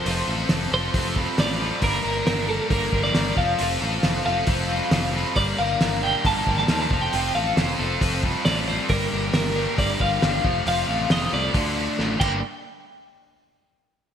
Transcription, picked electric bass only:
X:1
M:4/4
L:1/8
Q:1/4=136
K:Fmix
V:1 name="Picked electric bass" clef=bass
F,,, A,,, F,,, F,,, F,,,2 A,,,2 | G,,, G,,, G,,,2 G,,, G,,, G,,, F,,, | F,,, A,,, F,,, F,,, F,,,2 F,,,2 | G,,, G,,, G,,,2 G,,, G,,, E,, F,,, |
F,,, A,,, F,,, F,,, F,,,2 A,,,2 | G,,, G,,, G,,,2 G,,, G,,, G,,, F,,, | F,,, A,,, F,,, C,, D,,2 A,,, G,,, | z8 |]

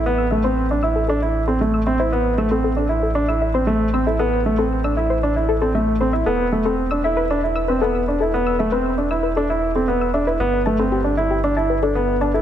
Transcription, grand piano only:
X:1
M:4/4
L:1/16
Q:1/4=116
K:Am
V:1 name="Grand piano"
B,2 A, C2 D E2 D E2 C A,2 C E | B,2 A, C2 D E2 D E2 C A,2 C E | B,2 A, C2 D E2 D E2 C A,2 C E | B,2 A, C2 D E2 D E2 C B,2 D E |
B,2 A, C2 D E2 D E2 C B,2 D E | B,2 A, C2 D E2 D E2 D B,2 D E |]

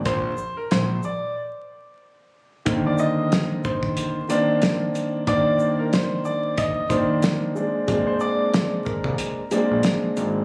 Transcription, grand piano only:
X:1
M:4/4
L:1/8
Q:"Swing 16ths" 1/4=92
K:Cm
V:1 name="Grand piano"
z8 | [D,E,B,C]4- [D,E,B,C] [E,B,CD]3 | [E,B,CD]4- [E,B,CD] [E,B,CD]2 [A,B,CD] | [A,B,CD]4- [A,B,CD] [A,B,CD]3 |]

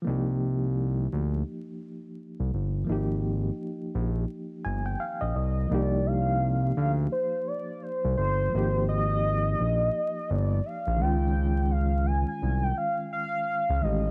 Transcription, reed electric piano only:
X:1
M:4/4
L:1/16
Q:"Swing 16ths" 1/4=85
K:Cm
V:1 name="Reed electric piano"
z16 | z8 z2 a g f e3 | z16 | z16 |
z16 |]
V:2 name="Reed electric piano"
[F,B,EG]16 | [F,B,EG]12- [F,B,EG]2 z2 | [F,B,EG]16 | [F,B,EG]12- [F,B,EG]2 [E,A,_DF]2- |
[E,A,_DF]12- [E,A,DF]2 [E,A,DG]2 |]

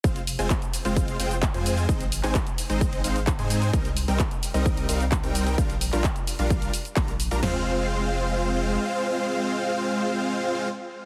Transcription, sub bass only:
X:1
M:4/4
L:1/16
Q:1/4=130
K:Fm
V:1 name="Sub bass" clef=bass
F,,,3 F,,, z3 F,,,3 F,,,3 F,,3 | A,,,3 A,,, z3 A,,,3 A,,,3 A,,3 | C,,3 C,, z3 C,,3 C,,3 C,,3 | B,,,3 B,,, z3 B,,,3 z2 B,,,3 B,,, |
F,,,12 z4 | z16 |]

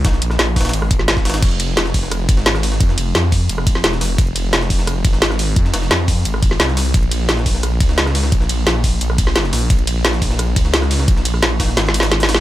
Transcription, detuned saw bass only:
X:1
M:4/4
L:1/8
Q:1/4=174
K:Fm
V:1 name="Detuned saw bass" clef=bass
B,,, B,,, B,,,2 A,,,4 | F,,,4- F,,, A,,,3 | F,, F,,, F,,2 F,,,3 F,,, | F,,,4- F,,, A,,,3 |
F,, F,,, F,,2 A,,,2 C,,2 | B,,,4- B,,, D,,3 | B,,, B,,, B,,,2 B,,,3 B,,, | B,,,4- B,,, D,,3 |
B,,, B,,, B,,,2 A,,,4 |]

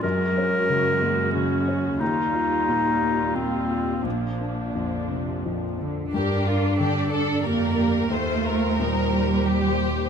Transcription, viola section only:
X:1
M:3/4
L:1/8
Q:1/4=89
K:Eblyd
V:1 name="Viola section"
[_A,_G]6 | [G,F]6 | [F,D]4- [F,D] z | [K:Gm] B2 A2 G2 |
F2 E G3 |]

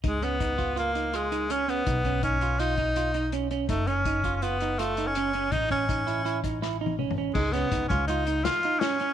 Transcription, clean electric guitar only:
X:1
M:5/4
L:1/8
Q:1/4=164
K:Dbmix
V:1 name="Clean electric guitar"
E D E F F E F E D D | E D E F F E F E D D | E D E F F E F E D D | E ^C E =E E _E =E _E C C |
E D E F F E F E D D |]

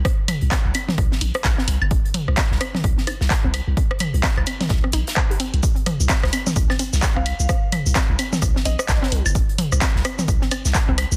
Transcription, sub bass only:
X:1
M:4/4
L:1/16
Q:"Swing 16ths" 1/4=129
K:Cm
V:1 name="Sub bass" clef=bass
z3 C,, z C,, z2 C,, z B,,, z B,,, z C,, G,,,- | G,,, z2 C,, z C,, z2 C,, z2 C,, z C,,2 C,, | z3 C,, z C,, z2 C,, z B,,, z4 C,, | z3 C,, z C,, z2 C,, z2 C,, z C,,2 C,, |
z3 C,, z C,, z2 C,, z B,,, z B,,, z C,, G,,,- | G,,, z2 C,, z C,, z2 C,, z2 C,, z C,,2 C,, |]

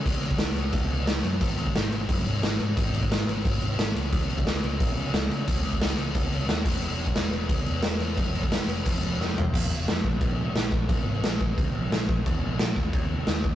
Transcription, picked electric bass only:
X:1
M:4/4
L:1/8
Q:1/4=177
K:Fphr
V:1 name="Picked electric bass" clef=bass
D,, D,, D,, D,, D,, D,, D,, G,, | A,,, A,,, A,,, A,,, G,,, A,, A,,, A,, | A,,, A,,, A,,, A,,, A,,, A,,, A,,, D,, | D,, D,, D,, D,, B,,, D, D,, D, |
D,, D,, D,, D,, D,, D,, E,, _F,,, | _F,,, F,,, F,,, F,,, D,, _F,, F,,, F,, | F,,, F,,, F,,, F,,, F,,, F,,, F,,, C,, | B,,, F,,, F,,, B,,, B,,,2 B,,,2 |
B,,, A,,, B,,,2 D,, B,,, B,,,2 | E,, B,,, B,,, E,, E,,2 E,,2 |]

